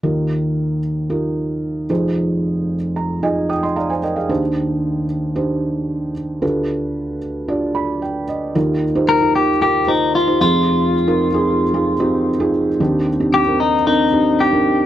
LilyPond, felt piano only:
<<
  \new Staff \with { instrumentName = "Felt piano" } { \time 4/4 \key ees \major \tempo 4 = 113 << { r1 | r4. bes''8 aes''8 <g'' ees'''>16 <ees'' c'''>16 <d'' f'' bes''>16 <c'' aes''>16 <bes' ees'' g''>16 <aes' f''>16~ | <aes' f''>16 r2. r8. | r2 r8 b''8 g''8 ees''8 |
r1 | r1 | r1 | } \\ { <ees' f' g' bes'>4. r8 <ees' f' g' bes'>4. <ees' f' aes' c''>8~ | <ees' f' aes' c''>4 r4 <ees' f' aes' ees''>4. r8 | <d' ees' g' c''>4. r8 <d' ees' g' c''>4. r8 | <d' f' g' b'>4. r8 <d' f' g' d''>4. r8 |
<ees' f' g' bes'>8 r16 <ees' f' g' c''>16 r16 <ees' f' g' bes'>8 r16 <ees' f' g' bes'>16 r16 <ees' f' g' c''>8 r16 <ees' f' g' c''>16 <c' ees' f' aes'>8~ | <c' ees' f' aes'>8 r16 <c' ees' f' bes'>16 r16 <c' ees' f' aes'>8 r16 <c' ees' f' aes'>16 r16 <c' ees' f' g'>8 r16 <c' ees' f' aes'>8 r16 | <c' d' ees' g'>8 r16 <c' d' ees' g'>16 r16 <c' d' ees' bes'>8 r16 <c' d' ees' bes'>16 r16 <c' d' ees' g'>8 r16 <c' d' ees' bes'>8 r16 | } >> }
  \new Staff \with { instrumentName = "Felt piano" } { \clef bass \time 4/4 \key ees \major <ees, ees>2.~ <ees, ees>8 <f,, f,>8~ | <f,, f,>2.~ <f,, f,>8 r8 | <ees, ees>1 | <d, d>1 |
<ees, ees>2.~ <ees, ees>8 <f,, f,>8~ | <f,, f,>2.~ <f,, f,>8 r8 | <ees, ees>1 | }
>>